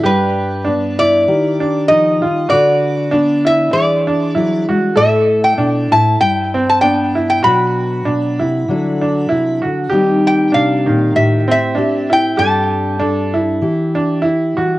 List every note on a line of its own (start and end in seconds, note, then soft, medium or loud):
0.03 1.27 G2 medium
0.03 0.66 D4 medium
0.03 0.64 G4 medium
0.03 1.03 B4 medium
0.65 1.24 B3 medium
0.65 0.98 D4 medium
0.65 1.28 D4 soft
0.99 1.60 E4 medium
0.99 1.88 D5 medium
1.28 2.22 D#3 medium
1.28 2.51 G4 medium
1.60 1.88 D4 medium
1.88 2.23 F3 medium
1.88 2.22 D#4 medium
1.88 2.49 D#5 medium
2.22 2.51 D#3 medium
2.22 2.49 F4 medium
2.49 3.71 D3 medium
2.49 3.10 F#4 medium
2.49 3.13 B4 medium
2.49 3.46 D5 medium
3.11 3.71 B3 medium
3.11 3.45 D4 medium
3.11 4.97 D4 medium
3.11 3.71 B4 medium
3.45 4.06 E4 medium
3.45 3.73 E5 medium
3.73 4.93 E3 medium
3.73 4.94 G#4 medium
3.73 4.65 D5 medium
4.07 4.34 D4 medium
4.35 4.68 F#3 medium
4.35 4.68 E4 medium
4.68 4.96 G#3 medium
4.68 4.96 F#4 medium
4.95 5.57 A2 medium
4.95 6.17 A3 medium
4.95 6.17 E4 medium
4.95 5.57 A4 medium
4.95 6.18 A4 medium
4.95 5.43 E5 medium
5.44 5.92 G5 medium
5.57 5.91 B2 medium
5.57 5.92 D4 medium
5.91 6.20 A2 medium
5.91 6.53 E4 medium
5.91 6.20 A5 medium
6.20 7.43 G2 medium
6.20 6.82 B4 medium
6.20 6.69 G5 medium
6.54 6.81 C4 medium
6.69 6.81 A5 medium
6.81 7.41 B3 medium
6.81 7.15 D4 medium
6.81 7.44 D4 medium
6.81 7.41 B4 medium
6.81 7.28 G5 medium
7.15 7.43 E4 medium
7.30 7.43 G5 medium
7.43 8.04 B2 medium
7.43 8.64 F#3 medium
7.43 8.65 D4 medium
7.43 8.04 F#4 medium
7.43 8.65 F#4 medium
7.43 8.65 B4 medium
7.43 9.59 B5 medium
8.05 8.40 B2 medium
8.05 8.39 D4 medium
8.39 8.67 C3 medium
8.39 9.00 E4 medium
8.68 9.30 D3 medium
8.68 9.88 F#3 medium
8.68 9.89 D4 medium
8.68 9.89 F#4 soft
8.68 9.89 A4 medium
9.01 9.28 D4 medium
9.29 9.64 C3 medium
9.29 9.62 E4 medium
9.62 9.91 D3 medium
9.62 9.90 F#4 medium
9.90 10.53 D#3 medium
9.90 11.18 G3 medium
9.90 11.12 C4 medium
9.90 10.51 G4 medium
9.94 11.13 D#4 medium
9.94 11.15 G4 medium
10.27 10.54 G5 medium
10.52 10.88 C3 medium
10.52 10.86 D4 medium
10.52 11.15 F5 medium
10.86 11.15 A#2 medium
10.86 11.47 D#3 medium
11.15 12.35 A2 medium
11.15 11.78 G4 medium
11.15 11.50 E5 medium
11.48 11.75 C4 medium
11.48 12.14 E5 medium
11.75 12.36 C4 medium
11.75 12.09 D4 medium
11.75 12.36 E4 medium
11.75 12.40 G4 medium
12.10 12.37 E4 medium
12.10 12.38 G5 medium
12.37 13.62 G2 medium
12.37 13.59 G3 medium
12.37 12.98 D4 medium
12.37 12.98 G4 medium
12.37 12.99 A4 medium
12.37 13.58 A5 medium
12.99 13.33 D4 medium
12.99 13.58 D4 medium
12.99 13.59 A4 medium
13.34 13.95 E4 medium
13.62 14.56 E3 medium
13.62 14.79 G4 medium
13.95 14.23 D4 medium
14.22 14.56 E4 medium
14.57 14.79 E3 medium
14.57 14.79 F#4 medium